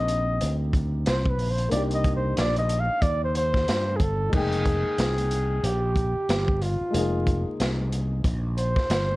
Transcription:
Already playing: A#1 A#3 C4 D#4 G4 D#5
0.08 closed hi-hat
0.41 D2, closed hi-hat
0.73 kick, closed hi-hat
1.06 C2 C5, snare, closed hi-hat
1.26 kick
1.30 B4
1.39 A#1, open hi-hat
1.51 C5
1.58 closed hi-hat
1.69 C2 A#3 D4 D5, closed hi-hat
1.73 D#4 G4
1.91 D#5, closed hi-hat
2.04 kick, closed hi-hat
2.16 C5
2.37 A#1 D5, snare, closed hi-hat
2.56 D#5, closed hi-hat
2.69 closed hi-hat
2.80 F5
2.89 muted fretless electric bass stroke
3.02 D#2 D5, kick, closed hi-hat
3.24 C5
3.35 C5, closed hi-hat
3.54 kick, snare
3.68 G2, snare, closed hi-hat
3.96 G1 G#4, kick, closed hi-hat
4.02 A4
4.29 F1 G#3 A#3, kick, crash
4.34 D#4 G#4 G5
4.52 closed hi-hat
4.65 kick, closed hi-hat
4.85 muted fretless electric bass stroke
4.98 C2, snare, closed hi-hat
5.18 closed hi-hat
5.31 closed hi-hat
5.63 A#1 G4, closed hi-hat
5.96 kick, closed hi-hat
6.16 muted fretless electric bass stroke
6.29 G1, snare, closed hi-hat
6.48 kick
6.62 F4, closed hi-hat
6.81 muted fretless electric bass stroke
6.91 F1 G#3 A#3, closed hi-hat
6.95 D#4 G#4
7.27 kick, closed hi-hat
7.46 muted fretless electric bass stroke
7.60 C2, snare, closed hi-hat
7.92 closed hi-hat
8.24 A#1, kick, closed hi-hat
8.58 C5, closed hi-hat
8.76 kick, snare
8.90 G1, snare, closed hi-hat

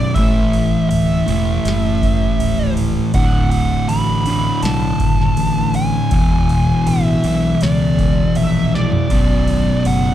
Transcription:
Already playing: B1 F#2 B2 D5
0.14 A1 A2 E3 A3 E5, kick, crash
0.53 crash
0.89 D1 E5, crash
1.27 E1 A2 E3 A3, crash
1.65 F#1, snare, crash
2.03 kick, crash
2.39 C#1, crash
2.77 crash
3.14 D1 D2 A2 D3 F#5, kick, crash
3.50 F#5, crash
3.88 A1 B5, crash
4.26 D2 A2 D3, crash
4.63 B1 A5, snare, crash
5.00 F#1, kick, crash
5.22 snare
5.37 A1, crash
5.74 G#5, crash
6.11 E1 E2 B2 E3, kick, crash
6.49 crash
6.87 A1 E5, crash
7.24 B1 E2 B2 E3, crash
7.61 C#2 D5, snare, crash
7.99 kick, crash
8.35 A#1 E5, crash
8.75 D5, snare
8.92 floor tom
9.10 B0 B1 F#2 B2, kick, crash
9.48 crash
9.85 F#1 F#5, crash

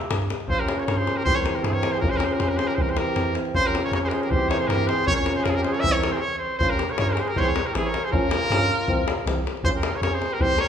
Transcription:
0.01 davul high
0.11 G2, davul high
0.22 davul high
0.30 davul high
0.40 davul high
0.47 A#1 F3 C#4 F4 C5, davul low
0.60 G4 A#4
0.69 davul high
0.79 A#4 C#5, davul high
0.86 G2 A#4 C#5, davul high
0.97 G#4 C5
1.07 davul high
1.16 G4 A#4
1.24 C2 E3 C4 G4 C5, davul low
1.35 A#4 C#5
1.46 davul high
1.55 G4 A#4, davul high
1.64 G2 E4 G#4, davul high
1.73 A#4 C#5
1.83 davul high
1.92 G#4 C5, davul high
2.01 A#1 F3 C#4 F4 A#4, davul low
2.10 G#4 C5
2.17 G4 A#4, davul high
2.25 G#4 C5
2.31 A#4, davul high
2.36 G4
2.40 F2 G#4 C5, davul high
2.49 G4 A#4
2.57 G#4 C5, davul high
2.67 G4 A#4, davul high
2.74 G#4 C5, davul low
2.78 C2 E3 C4 G4 A#4
2.89 G#4 C5, davul high
2.96 G4 A#4, davul high
3.07 davul high
3.16 F2, davul high
3.35 davul high
3.45 davul high
3.54 A#1 F3 C#4 F4 C5, davul low
3.64 G4 A#4
3.75 davul high
3.84 A#4 C#5
3.92 F2 A#4 C#5, davul high
4.04 G#4 C5
4.09 G4 G#4 A#4 C5, davul high
4.22 G4 A#4, davul high
4.30 C2 E3 C4 G4 C5, davul low
4.50 A#4 C#5, davul high
4.59 G#4 C5, davul high
4.67 G2 G4 A#4, davul high
4.88 G#4 C5, davul high
4.99 davul high
5.07 A#1 F3 C#4 A#4 C#5, davul low
5.16 C#5
5.20 A#4
5.26 davul high
5.36 G#4 C5, davul high
5.44 F2 A#4, davul high
5.48 F4 G#4
5.53 F4 A#4
5.57 G4
5.63 G#4 C5, davul high
5.73 A#4 C#5, davul high
5.80 C2 E5, davul low
5.84 E3 C4 C5
5.92 A#4 C#5
6.03 davul high
6.12 G#4 A#4 C5
6.16 G4 G#4 C5 C#5
6.38 C5
6.59 A#1 F3 C#4 F4 C5, davul low
6.70 A#4
6.74 G4
6.79 davul high
6.89 A#4 C#5, davul high
6.98 G2 F3 C#4 A#4 C#5, davul high
7.09 A#4 C5
7.13 G4 G#4
7.17 G#4 C5, davul high
7.28 G4 A#4, davul high
7.36 C2 E3 C4 G4 C5 C#5, davul low
7.41 G#4 A#4 C5
7.46 C#5
7.51 A#4
7.56 davul high
7.66 G4 A#4, davul high
7.74 A1 E3 C4 E4 G#4, davul high
7.86 A#4 C#5
7.94 davul high
8.04 G#4 C5
8.12 A#1 F3 C#4 F4 A#4, davul low
8.31 davul high
8.42 davul high
8.49 G2 F3 C#4, davul high
8.81 davul high
8.87 C2 E3 C4, davul low
9.08 davul high
9.18 davul high
9.25 C2 E3 C4, davul high
9.38 davul high
9.47 davul high
9.57 davul high
9.63 A#1 F3 C#4 F4 C5, davul low
9.75 G4 A#4
9.83 davul high
9.93 A#4 C#5, davul high
10.01 F2 F3 C#4 A#4 C#5, davul high
10.11 G#4 C5
10.22 davul high
10.31 G4 A#4, davul high
10.38 C2 E3 C4 G4 C5, davul low
10.58 A#4 C#5, davul high

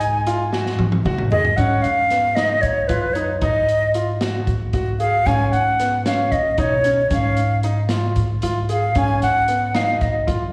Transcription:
Already playing: G#2 G#5
0.01 closed hi-hat
0.26 F4, closed hi-hat
0.53 F#4, snare
0.66 snare
0.79 G#2, high tom
0.92 high tom
1.05 G#2 F#4, mid tom
1.18 mid tom
1.32 G#4 D#5, floor tom
1.45 floor tom
1.57 G#2 C#4 F#5, kick, closed hi-hat
1.82 G#2 F5, closed hi-hat
2.10 B3, snare, closed hi-hat
2.35 D#4 D#5, snare, closed hi-hat
2.61 G#2 C#5, kick, closed hi-hat
2.88 F#2 F4 B4, kick, closed hi-hat
3.13 D#4 C#5, closed hi-hat
3.40 G#2 D#4 D#5, kick, closed hi-hat
3.68 closed hi-hat
3.94 F4, closed hi-hat
4.21 F#4, snare, closed hi-hat
4.47 G#2, kick, closed hi-hat
4.73 G#2 F#4, kick, closed hi-hat
5.00 G#4 F5, closed hi-hat
5.26 G#2 C#4 G#5, kick, closed hi-hat
5.52 G#2 F#5, closed hi-hat
5.79 B3, snare, closed hi-hat
6.06 C#4 F5, snare, closed hi-hat
6.32 G#2 D#5, kick, closed hi-hat
6.58 B2 D#4 C#5, kick, closed hi-hat
6.84 C#4, closed hi-hat
7.10 G#2 C#4 F5, kick, closed hi-hat
7.37 closed hi-hat
7.63 D#4, closed hi-hat
7.89 F4, snare, closed hi-hat
8.16 G#2, kick, closed hi-hat
8.42 G#2 F4, closed hi-hat
8.69 G#4 F5, closed hi-hat
8.95 G#2 C#4 G#5, kick, closed hi-hat
9.22 G#2 F#5, snare, closed hi-hat
9.48 B3, closed hi-hat
9.74 D#4 F5, snare, closed hi-hat
10.01 G#2 D#5, kick, snare, closed hi-hat
10.27 F#2 F4, kick, closed hi-hat

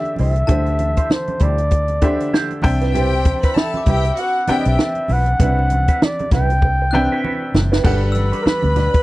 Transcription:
Already playing: D3 D4 G4 C5 E5
0.05 closed hi-hat
0.16 C2 E4 G4, open hi-hat, high conga
0.21 C5 E5
0.36 muted clean electric guitar stroke, closed hi-hat
0.47 D2 D3 D4 E4 G4 C5 E5 A5, kick, closed hi-hat, muted conga, low conga
0.51 C5
0.66 closed hi-hat, muted conga
0.79 muted clean electric guitar stroke, closed hi-hat, high conga
0.97 E4 G4 C5, kick, closed hi-hat
1.10 C5, muted clean electric guitar stroke, snare, high conga
1.27 muted clean electric guitar stroke, closed hi-hat, high conga
1.39 D2 E4 G4 C5 D5, kick, closed hi-hat, low conga
1.58 muted clean electric guitar stroke, closed hi-hat
1.71 muted clean electric guitar stroke, kick, closed hi-hat, muted conga
1.88 closed hi-hat, muted conga
2.01 D3 D4 E4 G4 C5 E5, kick, closed hi-hat, high conga
2.20 muted clean electric guitar stroke, closed hi-hat
2.33 E4 G4 C5, snare, high conga
2.51 closed hi-hat, muted conga
2.62 C2 C3 C4 D4 C5 E5 G5, muted clean electric guitar stroke, kick, open hi-hat, high conga
2.81 E4 F#4 B4, snare, closed hi-hat
2.93 E4 F#4 G4 B4 C5 G5, closed hi-hat, low conga
3.12 muted conga
3.25 muted clean electric guitar stroke, kick, closed hi-hat, high conga
3.42 E4 F#4 B4 B5, kick, closed hi-hat
3.56 A4 E5 A5 B5, muted clean electric guitar stroke, snare, muted conga, high conga
3.74 D6, muted clean electric guitar stroke, closed hi-hat, muted conga, high conga
3.86 C2 E4 F#4 G4 B4 G5, kick, closed hi-hat, low conga
3.97 E6
4.05 muted clean electric guitar stroke, closed hi-hat
4.17 F#4 F#5, muted clean electric guitar stroke, closed hi-hat
4.47 C3 C4 D4 E4 F#4 G4 B4 E5 G5, muted fingered electric bass stroke, closed hi-hat, high conga
4.59 D#5
4.65 B1 E5, muted clean electric guitar stroke, closed hi-hat
4.79 muted clean electric guitar stroke, snare, muted conga, high conga
4.95 closed hi-hat, muted conga
5.08 B1 E4 F#4 B4, open hi-hat, high conga
5.13 F#5
5.26 muted clean electric guitar stroke, closed hi-hat
5.40 C2 C3 C4 D4 E4 F#4 B4 E5 F#5, kick, closed hi-hat, low conga
5.59 muted conga
5.70 muted clean electric guitar stroke, closed hi-hat, high conga
5.88 E4 F#4 B4, kick, closed hi-hat
6.02 D5, muted clean electric guitar stroke, snare, muted conga, high conga
6.19 muted clean electric guitar stroke, closed hi-hat, muted conga, high conga
6.31 C2 E4 F#4 B4 G5, kick, snare, closed hi-hat, low conga
6.50 muted clean electric guitar stroke, closed hi-hat
6.62 muted clean electric guitar stroke, kick
6.82 muted clean electric guitar stroke
6.91 C3 C4 D4 B4 E5 G5 F#6, high conga
7.12 E4 F#4 B4
7.23 E4 F#4 B4, muted conga, high conga
7.54 F#1, muted clean electric guitar stroke, snare, high conga, low conga
7.72 E4 F#4 B4, snare
7.84 G1 G3 D4 F#4 A4 B4 F#5 B5, kick, crash, muted conga, low conga
8.03 muted clean electric guitar stroke, muted conga
8.12 E6, muted clean electric guitar stroke, closed hi-hat
8.17 high conga
8.32 D4 F#4 B4, closed hi-hat
8.42 D4 F#4 A#4
8.46 B4, muted fingered electric bass stroke, snare, high conga
8.63 D2, muted clean electric guitar stroke, closed hi-hat, muted conga, high conga
8.76 D4 F#4 D5, snare, closed hi-hat, low conga
8.94 muted clean electric guitar stroke, kick, closed hi-hat

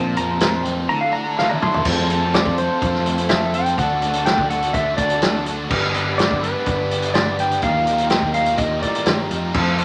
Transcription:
Already playing: A#1 A#2 A#3 C4 F4 A#4 C5 A5
0.15 F2 F3 A#3 C4 A#5, closed hi-hat
0.20 F4 A#4
0.30 C4 F4 A#4
0.39 F3, snare, closed hi-hat
0.43 A#3 C4 F4 A#4
0.65 A#3 C4 F4 A#4, closed hi-hat
0.78 C4 F4 A#4
0.88 D3 A3 E4 F#4 A4 D5 A#5
1.01 E4 F#4 A4 F5
1.12 A3 D4 E4 F#4 A#5
1.16 A4
1.24 E4 F#4 A4 A#5
1.39 D3 A3 E4 F#4 A4 F5, snare
1.49 A#5, high tom
1.61 A3 C6, mid tom
1.74 floor tom
1.83 F2 F3 A3 C4 E4 F4 A4 C5, kick, crash
1.87 F4
1.99 C4 E4 A4
2.10 A3 C4 E4 F4 A4, closed hi-hat
2.23 C4 E4 A4
2.34 F3 A3 C4 E4 F4 A4 D5, snare, closed hi-hat
2.45 F2, kick
2.58 A3 C4 E4 F4 C5, closed hi-hat
2.62 A4
2.70 C4 A4
2.82 F2 F3 A3 C4 F4 A4, kick, closed hi-hat
2.95 snare
3.06 A3 C4 E4 A4, closed hi-hat
3.18 C4 E4 A4, closed hi-hat
3.29 F3 A3 C4 E4 F4 E5, snare, closed hi-hat
3.33 A4
3.42 C4 E4 A4
3.54 A3 C4 E4 F4 A4 G5, closed hi-hat
3.66 closed hi-hat
3.78 D2 D3 A3 D4 F#4 A4 D5 F#5, kick, closed hi-hat
3.91 D4 F#4 A4
4.02 A3 D4 F#4 A4, closed hi-hat
4.13 D4 F#4 A4, closed hi-hat
4.26 D3 A3 D4 F#4 A4 G5, snare, closed hi-hat
4.38 D2, kick
4.50 A3 D4 F#4 A4 F#5, closed hi-hat
4.62 D4 F#4 A4, closed hi-hat
4.73 D2 D3 D4 F#4 A4 E5, kick, closed hi-hat
4.97 D2 A3 D5, kick, closed hi-hat
5.01 D4 F#4 A4
5.10 F#4 A4, closed hi-hat
5.15 D4
5.22 D3 A3 D4 F#4, snare, closed hi-hat
5.26 A4
5.35 D4 F#4 A4
5.46 A3 D4 F#4 A4, closed hi-hat
5.70 G1 G3 B3 D4 G4 B4 D5, kick, crash
5.83 D4 G4 B4
5.93 G3 B3 D4 G4 B4, closed hi-hat
5.97 B4
6.07 D4 G4 B4
6.18 G3 B3 D4 G4 D5, snare, closed hi-hat
6.22 B4
6.31 G1, kick
6.41 G3 B3 D4 B4, closed hi-hat
6.45 G4 B4
6.56 D4 G4 B4
6.65 G1 G3 B3 D4 B4, kick, closed hi-hat
6.91 G3 D4 G4 B4, closed hi-hat
7.02 G4 B4, closed hi-hat
7.06 D4
7.14 G3 B3 D4 D5, snare, closed hi-hat
7.18 G4 B4
7.29 D4 G4 B4
7.37 G3 B3 B4 G5, closed hi-hat
7.42 D4 G4 B4
7.51 closed hi-hat
7.62 D#2 D#3 G3 A#3 D#4 F4 G4 A#4 F5, kick, closed hi-hat
7.67 F4 A#4
7.77 D#4 F4 A#4
7.87 G3 D#4 F4 G4 A#4, closed hi-hat
7.98 F4 A#4, closed hi-hat
8.02 D#4
8.10 D#3 G3 A#3 D#4 F4 G4 A#4 G5, snare, closed hi-hat
8.22 D#2, kick
8.34 G3 D#4 G4 A#4 F5, closed hi-hat
8.38 F4 A#4
8.46 closed hi-hat
8.50 D#4 F4 A#4
8.56 D#2 D#3 G3 A#3 G4 A#4 D#5, kick, closed hi-hat
8.82 A2 G3 D#4 F4 D5, kick, closed hi-hat
8.86 A#4
8.95 D#4 F4 A#4, closed hi-hat
9.06 G2 D#3 G3 A#3 D#4 F4 G4 A#4, snare, closed hi-hat
9.30 F2 G3 D#4 F4 G4 A#4, closed hi-hat
9.34 A#4
9.54 F2 F3 A3 C4 F4 A4 C5 E5, kick, crash
9.58 C4 E4 A4
9.68 C4 E4 A4
9.78 A3 C4 E4 F4 A4, closed hi-hat

